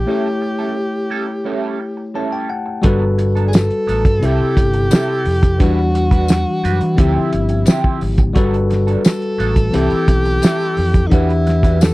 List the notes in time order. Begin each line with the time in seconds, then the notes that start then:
Already playing: G4
0.06 G3 A3 C#4 E4 G4 A4 C#5
0.41 muted clean electric guitar stroke
0.59 G3 C#4 E4 A4
0.76 muted clean electric guitar stroke
1.10 G3 C#4 E4 A4
1.27 muted clean electric guitar stroke
1.44 G3 C#4 E4 A4
1.80 muted clean electric guitar stroke
1.97 muted clean electric guitar stroke
2.14 G3 C#4 E4 A4 A5
2.32 G5
2.49 F#5, muted clean electric guitar stroke
2.66 muted clean electric guitar stroke
2.82 G1 F#3 G3 B3 D4 F#4 A4 B4, kick, closed hi-hat
3.18 muted clean electric guitar stroke, closed hi-hat
3.35 F#3 B3 D4 A4, closed hi-hat
3.48 G#4
3.52 muted clean electric guitar stroke, snare, closed hi-hat, tambourine
3.58 A4
3.71 closed hi-hat
3.87 A1 F#3 B3 D4 A4, closed hi-hat
4.05 G2, muted clean electric guitar stroke, kick, closed hi-hat
4.20 C2 C3 G3 C4 E4 A4, closed hi-hat
4.24 G4 A4
4.41 muted fingered electric bass stroke
4.57 G1, muted clean electric guitar stroke, kick, closed hi-hat
4.74 muted clean electric guitar stroke, closed hi-hat
4.91 G3 C4 E4 A4, snare, closed hi-hat, tambourine
5.25 F2, muted clean electric guitar stroke, open hi-hat
5.42 muted clean electric guitar stroke, kick, closed hi-hat
5.58 E2 E3 G3 D4 F#4 B4, kick, closed hi-hat
5.62 G3
5.95 muted clean electric guitar stroke, closed hi-hat
6.11 G3 D4 F#4 B4, kick, closed hi-hat
6.28 muted clean electric guitar stroke, snare, closed hi-hat, tambourine
6.64 F#2 G3 D4 F#4 B4, closed hi-hat
6.81 E3, muted clean electric guitar stroke, closed hi-hat
6.95 D2 D3 F3 C4 E4, kick, closed hi-hat
6.99 G4
7.17 muted fingered electric bass stroke
7.33 G1, closed hi-hat
7.49 muted clean electric guitar stroke, closed hi-hat
7.66 F3 C4 E4 G4, snare, closed hi-hat, tambourine
7.84 kick
8.01 G#1, muted clean electric guitar stroke, open hi-hat
8.18 muted clean electric guitar stroke, kick, closed hi-hat
8.33 G1 F#3 G3 B3 D4 F#4 A4 B4, kick, closed hi-hat
8.37 A4
8.54 closed hi-hat
8.70 muted clean electric guitar stroke, snare, closed hi-hat
8.87 F#3 B3 D4 A4, closed hi-hat
9.04 A4, snare, closed hi-hat, tambourine
9.22 closed hi-hat
9.38 A1 F#3 B3 D4 A4, closed hi-hat
9.56 muted clean electric guitar stroke, kick, closed hi-hat
9.71 C2 E3 G3 C4 E4 A4, closed hi-hat
9.75 G4 A4
9.91 muted fingered electric bass stroke, closed hi-hat
10.08 B1, muted clean electric guitar stroke, kick, closed hi-hat
10.25 muted clean electric guitar stroke, closed hi-hat
10.42 G3 C4 E4 A4, snare, closed hi-hat, tambourine
10.77 F2, muted clean electric guitar stroke, open hi-hat
10.94 muted clean electric guitar stroke, kick, closed hi-hat
11.07 E3 D4 D#4
11.11 E2 G3 D4 E4 F#4 G4 B4 F#5, kick, closed hi-hat
11.30 closed hi-hat
11.47 muted clean electric guitar stroke, snare, closed hi-hat
11.63 G3 D4 F#4 B4, kick, closed hi-hat
11.81 A4, muted clean electric guitar stroke, snare, closed hi-hat, tambourine